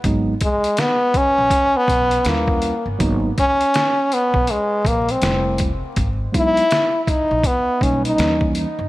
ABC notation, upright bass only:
X:1
M:4/4
L:1/16
Q:"Swing 16ths" 1/4=81
K:G#m
V:1 name="Upright bass" clef=bass
G,,,2 z4 z A,,, z2 B,,,2 D,,3 =G,,, | G,,,2 z4 z B,,, z2 A,,,2 =F,,,4 | G,,,2 z4 z A,,, z2 B,,,2 D,,3 =G,,, |]